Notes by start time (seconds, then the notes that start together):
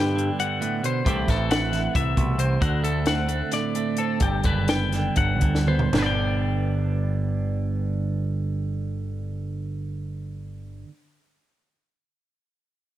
Already playing: G2 D3 B3 G5
0.16 D3, closed hi-hat
0.39 G2 F#5, closed hi-hat
0.61 A2, closed hi-hat
0.84 B2 C5, closed hi-hat
1.05 C2 C3 E3 A3 C4 G4, kick, closed hi-hat
1.09 E4
1.28 A1 E3 A4, kick, snare, closed hi-hat
1.51 A3 F#5, snare, closed hi-hat
1.73 E3, snare, closed hi-hat
1.94 C2 A2 E5, kick, closed hi-hat
2.17 C2 B2, kick, closed hi-hat
2.38 C3 C5, closed hi-hat
2.61 D2 D3 F#4, kick, closed hi-hat
2.83 A3 A4, closed hi-hat
3.06 C4 F#5, snare, closed hi-hat
3.29 A3, closed hi-hat
3.52 A2 D5, snare, closed hi-hat
3.75 A3, closed hi-hat
3.97 C4 A4, closed hi-hat
4.20 G1 G2 G4, kick, closed hi-hat
4.43 F#1 D3 B4, kick, closed hi-hat
4.68 B3 G5, snare, closed hi-hat
4.92 D3, snare, closed hi-hat
5.16 G1 G2 F#5, kick, closed hi-hat
5.41 D2 D3, kick, closed hi-hat
5.55 snare
5.67 B3 C5, mid tom
5.79 floor tom
5.93 G1 G2 D3, snare, floor tom, crash
5.98 B3 D4 B4
6.03 D5 G5